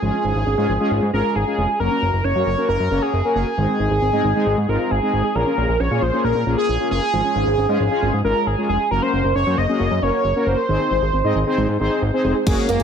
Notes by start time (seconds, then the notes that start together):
Already playing: G#4
0.02 G#1 F3 G#3 C#4 F4 G#4
0.14 C#4
0.24 G#1 G#3
0.35 G#1 G#4
0.47 G#1 C#4
0.58 G#2 G#3 C#4 F4 G#4 F5
0.69 G#1 F3
0.80 G#3 C#4 F4 G#4
0.91 G#1 G#3
1.02 G#2 G#4
1.13 G#1 G#3 C#4 F4 G#4 A#4
1.24 F5
1.35 G#1 G#4
1.46 G#3 C#4 F4 G#4
1.58 F1 G#3
1.69 G#4
1.80 F#1 F#3 A#3 C#4 F#4 A#4
1.91 C#4
2.02 F#1 A#3
2.13 F#1 A#4
2.24 F#1 C#4 C#5
2.35 F#2 A#3 C#4 F#4 A#4 F#5
2.47 F#1 F#3
2.58 A#3 C#4 F#4 A#4
2.69 F#1 A#3 A#4
2.80 F#2 A#4
2.91 F#1 A#3 C#4 F#4 C#5
3.02 G#4 F#5
3.13 F#1
3.24 A#3 C#4 F#4 A#4
3.35 F#1 A#3 G#4
3.47 A#4
3.57 G#1 D#3 G#3 C4 D#4 G#4
3.69 C4
3.80 G#1 G#3
3.91 G#1 G#4
4.02 G#1 C4
4.13 G#2 G#3 C4 D#4 G#4 D#5
4.24 G#1 D#3
4.35 G#3 C4 D#4 G#4
4.46 G#1 G#3
4.58 G#2 G#4
4.69 G#1 G#3 C4 D#4 F4 A#4
4.80 D#5
4.91 G#1 G#4
5.02 G#3 C4 D#4 G#4
5.13 G#1 G#3
5.24 G#4
5.35 A#1 F3 A#3 C#4 F4 G#4 A#4
5.47 C#4
5.58 A#1 A#3
5.69 A#1 G#4
5.80 A#1 C#4 C#5
5.91 A#2 A#3 C#4 F4 G#4 F5
6.02 A#1 F3 C5
6.13 A#3 C#4 F4 G#4
6.24 A#1 A#3 A#4
6.35 A#2 G#4
6.46 A#1 A#3 C#4 F4 G#4
6.58 G#4 F5
6.69 A#1
6.80 A#3 C#4 F4 G#4
6.91 F#1 A#3 G#4
7.02 G#4
7.13 G#1 F3 G#3 C#4 F4 G#4
7.24 C#4
7.36 G#1 G#3
7.47 G#1 G#4
7.58 G#1 C#4
7.69 G#2 G#3 C#4 F4 G#4 F5
7.80 G#1 F3
7.91 G#3 C#4 F4 G#4
8.02 G#1 G#3
8.13 G#2 G#4
8.24 G#1 G#3 C#4 F4 A#4
8.36 F5
8.47 G#1 G#4
8.58 G#3 C#4 F4 G#4
8.69 F1 G#3 G#4
8.80 G#4
8.91 F#1 F#3 A#3 C#4 F#4 A#4
9.02 C#4 C5
9.13 F#1 A#3
9.24 F#1 A#4
9.35 F#1 C#4 C#5
9.47 F#2 A#3 C#4 F#4 C5 F#5
9.58 F#1 F#3 D#5
9.69 A#3 C#4 F#4 G#4
9.80 F#1 A#3
9.91 F#2 A#4
10.02 F#1 A#3 C#4 F#4 A#4 C#5
10.13 F#5
10.24 F#1
10.36 A#3 C#4 F#4 A#4
10.47 F#1 A#3 C5
10.58 A#4
10.69 G#1 D#3 C4 D#4 G#4 C5
10.80 C4
10.91 G#1 G#3
11.02 G#1 G#4
11.13 G#1 C4
11.24 G#2 C4 D#4 G#4 D#5
11.36 G#1 D#3
11.47 C4 D#4 G#4 C5
11.58 G#1 G#3
11.69 G#2 G#4
11.80 G#1 C4 D#4 G#4 C5
11.91 D#5
12.02 G#1
12.13 C4 D#4 G#4 C5
12.24 F1 G#3
12.36 G#4
12.46 F#1 C#3 G#3 A#3 C#4 F#4 G#4, kick, closed hi-hat, crash
12.58 C#5
12.69 F#1 A#3 A#4, closed hi-hat
12.80 G#5, closed hi-hat